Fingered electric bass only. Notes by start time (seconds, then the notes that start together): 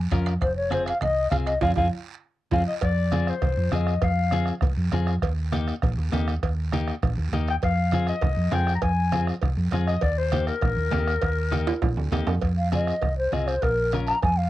0.12 F2
0.42 F1
1.01 C2
1.32 C2
1.62 F2
1.77 F2
2.52 F2
2.83 F2
3.42 C2
3.57 F2
3.72 F2
4.02 F2
4.62 C2
4.77 F2
4.93 F2
5.22 D#2
5.83 A#1
5.98 D#2
6.13 D#2
6.43 D#2
7.03 A#1
7.18 D#2
7.32 D#2
7.63 F2
8.22 C2
8.37 F2
8.52 F2
8.82 F2
9.42 C2
9.57 F2
9.71 F2
10.02 D#2
10.63 A#1
10.77 D#2
10.93 D#2
11.23 D#2
11.82 A#1
11.97 D2
12.12 D#2
12.27 F2
12.42 F2
13.03 C2
13.32 C2
13.63 A#1
14.24 F2